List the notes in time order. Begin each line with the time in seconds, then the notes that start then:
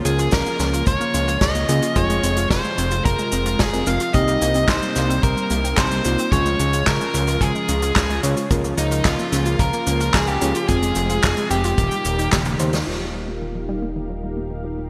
Already playing: C#3 F3 A#3 C#4 F4 A#4
0.05 C#2 C#4 G#4 G#5, closed hi-hat, cabasa
0.19 F4, closed hi-hat, cabasa
0.31 C#2 F3 A#4 A#5, kick, snare, closed hi-hat, cabasa
0.46 A#3, cabasa
0.59 C#2 C#4, snare, closed hi-hat, cabasa
0.73 F4, closed hi-hat, cabasa
0.86 C#2 F3 C#5 C#6, kick, closed hi-hat, cabasa
1.01 A#3, cabasa
1.14 C#2 C#4, closed hi-hat, cabasa
1.28 F4, closed hi-hat, cabasa
1.41 C#2 F3 D#5 D#6, kick, snare, closed hi-hat, cabasa
1.55 A#3, closed hi-hat, cabasa
1.69 C#2 A#3 C#4 F4 G#4, closed hi-hat, cabasa
1.82 F4, closed hi-hat, cabasa
1.96 F1 C3 F3 G#3 F4 G#4 C#5 C#6, kick, closed hi-hat, cabasa
2.10 G#3, closed hi-hat, cabasa
2.23 F1 C4, closed hi-hat, cabasa
2.36 F4, closed hi-hat, cabasa
2.50 F1 F3 C5 C6, kick, snare, closed hi-hat, cabasa
2.64 G#3, cabasa
2.78 F1 C4, closed hi-hat, cabasa
2.91 F4, closed hi-hat, cabasa
3.05 F1 F3 A#4 A#5, kick, closed hi-hat, cabasa
3.19 G#3, cabasa
3.32 F1 C4, closed hi-hat, cabasa
3.46 F4, closed hi-hat, cabasa
3.59 F1 F3 G#4 G#5, kick, snare, closed hi-hat, cabasa
3.73 G#3 C4 F4 A#4, closed hi-hat, cabasa
3.86 F1 G#3 C4 F4 A#4 F5 F6, closed hi-hat, cabasa
4.00 F4, closed hi-hat, cabasa
4.14 C2 D#3 G3 A#3 C4 D#4 G4 D#5 D#6, kick, closed hi-hat, cabasa
4.28 G3, cabasa
4.42 C2 A#3, closed hi-hat, cabasa
4.54 C4, closed hi-hat, cabasa
4.68 C2 D#3 C5 C6, kick, snare, clap, closed hi-hat, cabasa
4.82 G3, cabasa
4.95 C2 A#3, snare, closed hi-hat, cabasa
5.10 C4, closed hi-hat, cabasa
5.23 C2 D#3 A#4 A#5, kick, closed hi-hat, cabasa
5.37 G3, cabasa
5.50 C2 A#3, closed hi-hat, cabasa
5.64 C4, closed hi-hat, cabasa
5.77 C2 D#3 C5 C6, kick, snare, clap, closed hi-hat, cabasa
5.91 G3, closed hi-hat, cabasa
6.05 C2 A#3 C4 D#4 F4, closed hi-hat, cabasa
6.18 C4, closed hi-hat, cabasa
6.32 C#2 C#3 F3 G#3 C#4 F4 G#4 C#5 C#6, kick, closed hi-hat, cabasa
6.46 G#3, cabasa
6.59 C#2 C#4, closed hi-hat, cabasa
6.73 F4, closed hi-hat, cabasa
6.87 C#2 F3 A#4 A#5, kick, snare, clap, closed hi-hat, cabasa
7.00 G#3, cabasa
7.14 C#2 C#4, closed hi-hat, cabasa
7.27 F4, closed hi-hat, cabasa
7.41 C#2 F3 G#4 G#5, kick, closed hi-hat, cabasa
7.55 G#3, cabasa
7.68 C#2 C#4, closed hi-hat, cabasa
7.82 F4, closed hi-hat, cabasa
7.96 C#2 F3, kick, snare, clap, closed hi-hat, cabasa
8.10 G#3, closed hi-hat, cabasa
8.23 C#2 G#3 C#4 F4 C#5, closed hi-hat, cabasa
8.37 F4, closed hi-hat, cabasa
8.50 C#2 F3 A#3 C#4 F4 A#4, kick, closed hi-hat, cabasa
8.64 A#3, cabasa
8.78 C#2 C#4 D#4 D#5, closed hi-hat, cabasa
8.91 F4, closed hi-hat, cabasa
9.05 C#2 F3 F4 F5, kick, snare, clap, closed hi-hat, cabasa
9.19 A#3, cabasa
9.32 C#2 C#4, snare, closed hi-hat, cabasa
9.45 F4, closed hi-hat, cabasa
9.59 C#2 F3 A#4 A#5, kick, closed hi-hat, cabasa
9.73 A#3, cabasa
9.87 C#2 C#4, closed hi-hat, cabasa
10.00 F4, closed hi-hat, cabasa
10.14 C#2 F3 G#4 G#5, kick, snare, clap, closed hi-hat, cabasa
10.27 A#3 G4 G5, closed hi-hat, cabasa
10.41 C#2 A#3 C#4 F4 G#4, closed hi-hat, cabasa
10.55 F4, closed hi-hat, cabasa
10.68 F1 C3 F3 G#3 C4 F4 G#4 G#5, kick, closed hi-hat, cabasa
10.82 G#3, closed hi-hat, cabasa
10.95 F1 C4, closed hi-hat, cabasa
11.09 F4, closed hi-hat, cabasa
11.23 F1 F3, kick, snare, clap, closed hi-hat, cabasa
11.37 G#3, closed hi-hat, cabasa
11.50 F1 C4 G4 G5, closed hi-hat, cabasa
11.64 F4, closed hi-hat, cabasa
11.78 D#1 D#3 G3 A#3 G4, kick, closed hi-hat, cabasa
11.91 G3, closed hi-hat, cabasa
12.05 D#1 A#3, closed hi-hat, cabasa
12.19 D#4, closed hi-hat, cabasa
12.32 D#1 D#3, kick, snare, clap, closed hi-hat, high tom, cabasa
12.45 G3, closed hi-hat, high tom, cabasa
12.59 D#2 G3 A#3 D#4 C5, closed hi-hat, cabasa
12.73 D#4, snare, closed hi-hat, cabasa
12.87 D#1 D#3 G3 A#3 D#4 F4 G4 A#4 F5
13.01 F3
13.14 G3
13.28 A#3
13.41 D#3
13.55 F3
13.69 G3
13.82 A#3
13.96 D#3
14.10 F3
14.23 G3
14.37 A#3
14.51 D#3
14.64 F3
14.78 G3